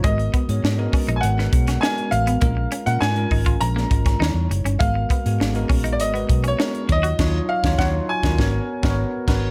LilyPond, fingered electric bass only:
\new Staff \with { instrumentName = "Fingered electric bass" } { \clef bass \time 4/4 \key gis \dorian \tempo 4 = 101 gis,,8 r16 gis,16 gis,8 r16 ais,,16 gis,,8 b,,8 r8 a,,8 | ais,,8 r16 ais,16 gis,8 gis,,8 ais,,8 gis,,8 dis,16 e,16 fis,,16 g,,16 | gis,,8 r16 gis,16 gis,,8 ais,,8 gis,,8 b,,8 r8 dis,8 | dis,8 r16 dis,16 dis,8 r16 dis,16 gis,,8 r16 gis,,8 r16 gis,,8 | }